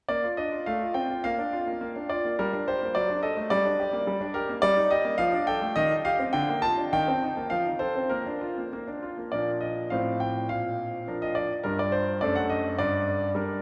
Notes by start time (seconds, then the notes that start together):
0.09 A#3 D5
0.24 F4
0.37 D4 D#5
0.52 F4
0.66 A3 F5
0.81 F4
0.94 C4 G5
1.10 F4
1.24 A#3 F5
1.39 D4
1.53 F4
1.67 A#3
1.81 A#3
1.96 D4
2.09 F4 D5
2.25 A#3
2.39 G3 A#4
2.54 D4
2.68 G4 C5
2.83 A#3
2.95 F#3 D5
3.10 D4
3.23 A4 D#5
3.37 A3
3.50 G3 D5
3.66 D4
3.79 G4
3.93 A#3
4.07 G3
4.21 D4
4.34 G4 A#4
4.49 A#3
4.62 G3 D5
4.77 D#4
4.91 G4 D#5
5.05 A#3
5.18 F3 F5
5.33 D4
5.47 A4 G5
5.62 A3
5.76 D#3 D#5
5.90 D#4
6.05 G4 F5
6.20 C4
6.33 D3 G5
6.49 A#3
6.62 F4 A5
6.78 D4
6.93 D#3 G5
7.08 C4
7.23 D#4
7.37 A#3
7.50 F3 F5
7.66 D#4
7.79 A4 C5
7.95 C4
8.09 A#3 A#4
8.26 D4
8.41 F4
8.58 A#3
8.73 A#3
8.88 D4
9.03 F4
9.18 A#3
9.32 A#2 F3 D4 A#4 D5
9.61 D#5
9.90 A2 F3 C4 C5 F5
10.20 G5
10.49 A#2 F5
11.07 F3 D4 A#4
11.22 D#5
11.35 D5
11.63 G2 G3 D4 A#4
11.79 D5
11.92 C5
12.21 F#2 A3 D4 A4 D5
12.35 F#5
12.49 D#5
12.79 G2 D5
13.35 G3 D4 A#4